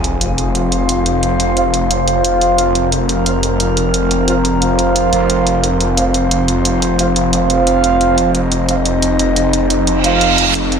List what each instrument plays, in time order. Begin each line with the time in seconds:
Already playing: detuned saw bass F1, synth drone F3 C4 F4, sub drop
0.04 closed hi-hat
0.21 brass ensemble F4 C5 F5, closed hi-hat
0.38 closed hi-hat
0.55 brass ensemble F4 C5 F5, closed hi-hat
0.72 closed hi-hat
0.89 closed hi-hat
1.06 closed hi-hat
1.23 closed hi-hat
1.40 closed hi-hat
1.57 brass ensemble F4 C5 F5, closed hi-hat
1.74 closed hi-hat
1.91 brass ensemble F4 C5 F5, closed hi-hat
2.08 closed hi-hat
2.24 closed hi-hat
2.41 synth drone A#4, closed hi-hat
2.58 closed hi-hat
2.75 closed hi-hat
2.92 brass ensemble F4 C5 F5, closed hi-hat
3.09 closed hi-hat
3.26 brass ensemble F4 C5 F5, closed hi-hat
3.43 closed hi-hat
3.60 closed hi-hat
3.77 closed hi-hat
3.94 closed hi-hat
4.11 closed hi-hat
4.28 brass ensemble F4 C5 F5, closed hi-hat
4.45 closed hi-hat
4.62 brass ensemble F4 C5 F5, closed hi-hat
4.79 closed hi-hat
4.96 closed hi-hat
5.13 detuned saw bass F1, synth drone F4, closed hi-hat
5.30 closed hi-hat
5.47 closed hi-hat
5.63 brass ensemble F4 C5 F5, closed hi-hat
5.80 closed hi-hat
5.97 brass ensemble F4 C5 F5, closed hi-hat
6.14 closed hi-hat
6.31 closed hi-hat
6.48 closed hi-hat
6.65 closed hi-hat
6.82 closed hi-hat
6.99 brass ensemble F4 C5 F5, closed hi-hat
7.16 closed hi-hat
7.33 brass ensemble F4 C5 F5, closed hi-hat
7.50 closed hi-hat
7.67 closed hi-hat
7.84 synth drone D#4, closed hi-hat
8.01 closed hi-hat
8.18 closed hi-hat
8.35 brass ensemble F4 C5 F5, closed hi-hat
8.52 closed hi-hat
8.69 brass ensemble F4 C5 F5, closed hi-hat
8.85 closed hi-hat
9.02 closed hi-hat
9.19 closed hi-hat
9.36 closed hi-hat
9.53 closed hi-hat
9.70 closed hi-hat
9.87 closed hi-hat, reverse cymbal
10.04 brass ensemble F4 C5 F5, closed hi-hat
10.21 closed hi-hat
10.38 closed hi-hat
10.55 detuned saw bass F1, synth drone F3 C4 F4, closed hi-hat, riser
10.72 closed hi-hat